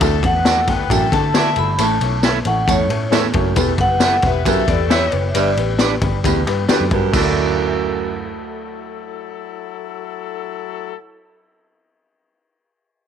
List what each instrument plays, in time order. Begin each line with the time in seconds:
0.00 picked electric bass D2, baritone saxophone D2, upright piano A3 D4 E4 F#4 A4, horn section A3 A4, kick, ride, tambourine
0.23 picked electric bass E2, upright piano A3 D4 E4 F#4 A4, vibraphone F#5, kick, ride
0.34 horn section B3 B4
0.44 upright piano A3 D4 E4 F#4 A4, horn section A3 A4, clean electric guitar A3 E4 F#4 D5, snare, ride, tambourine
0.67 picked electric bass D2, upright piano A3 D4 E4 F#4 A4, horn section B3 B4, vibraphone G5, kick, snare, ride
0.90 picked electric bass A1, baritone saxophone F#2, upright piano A3 D4 E4 F#4 A4, horn section A3 A4, kick, ride, tambourine
1.12 picked electric bass D3, upright piano A3 D4 E4 F#4 A4, vibraphone A5, kick, snare, ride
1.34 upright piano A3 D4 E4 F#4 A4, clean electric guitar A3 E4 F#4 D5, horn section E4 E5, snare, ride, tambourine
1.56 picked electric bass G1, upright piano A3 D4 E4 F#4 A4, vibraphone B5, ride
1.78 picked electric bass A1, baritone saxophone A2, upright piano A3 C#4 E4 A4 C#5, vibraphone A5, ride, tambourine
2.01 picked electric bass B1, upright piano A3 C#4 E4 A4 C#5, ride
2.23 upright piano A3 C#4 E4 A4 C#5, clean electric guitar E4 A4 C#5 E5, snare, ride, tambourine
2.45 picked electric bass A1, upright piano A3 C#4 E4 A4 C#5, vibraphone F#5, ride
2.67 picked electric bass E2, baritone saxophone A2, upright piano A3 C#4 E4 A4 C#5, vibraphone C#5, kick, ride, tambourine
2.89 picked electric bass A2, upright piano A3 C#4 E4 A4 C#5, ride
3.11 baritone saxophone E2, upright piano A3 C#4 E4 A4 C#5, clean electric guitar E4 A4 C#5 E5, snare, ride, tambourine
3.33 picked electric bass F#1, baritone saxophone F#2, upright piano A3 C#4 E4 A4 C#5, kick, ride
3.55 picked electric bass E1, baritone saxophone E2, upright piano G3 B3 E4 G4 B4, horn section A3 A4, kick, ride, tambourine
3.78 picked electric bass F#1, upright piano G3 B3 E4 G4 B4, vibraphone F#5, kick, ride
3.90 horn section B3 B4
4.00 upright piano G3 B3 E4 G4 B4, horn section A3 A4, clean electric guitar E4 G4 B4 E5, snare, ride, tambourine
4.22 picked electric bass E1, upright piano G3 B3 E4 G4 B4, horn section B3 B4, vibraphone E5, kick, snare, ride
4.45 picked electric bass B1, baritone saxophone F#2, upright piano G3 B3 E4 G4 B4, horn section A3 A4, kick, ride, tambourine
4.67 picked electric bass E2, upright piano G3 B3 E4 G4 B4, vibraphone D5, kick, snare, ride
4.89 upright piano G3 B3 E4 G4 B4, clean electric guitar E4 G4 B4 E5, horn section E4 E5, vibraphone C#5, snare, ride, tambourine
5.11 picked electric bass F#1, upright piano G3 B3 E4 G4 B4, ride
5.29 vibraphone E5
5.34 picked electric bass G1, baritone saxophone G2, upright piano G3 B3 D4 G4 B4, vibraphone D5, ride, tambourine
5.56 picked electric bass A1, upright piano G3 B3 D4 G4 B4, ride
5.79 upright piano G3 B3 D4 G4 B4, clean electric guitar D4 G4 B4 D5, snare, ride, tambourine
6.01 picked electric bass G1, upright piano G3 B3 D4 G4 B4, kick, ride
6.24 picked electric bass D2, baritone saxophone E2, upright piano G3 B3 D4 G4 B4, kick, ride, tambourine
6.46 picked electric bass G2, upright piano G3 B3 D4 G4 B4, snare, ride
6.69 baritone saxophone D2, upright piano G3 B3 D4 G4 B4, clean electric guitar D4 G4 B4 D5, muted picked electric bass stroke, snare, ride, tambourine
6.80 picked electric bass F#2
6.91 baritone saxophone F#2, picked electric bass G2, upright piano G3 B3 D4 G4 B4, kick, ride
7.11 picked electric bass D2, baritone saxophone F#2, horn section F#3 E4 A4, clean electric guitar A3 E4, upright piano D4 E4 F#4, kick, crash, tambourine
7.16 clean electric guitar F#4 D5, upright piano A4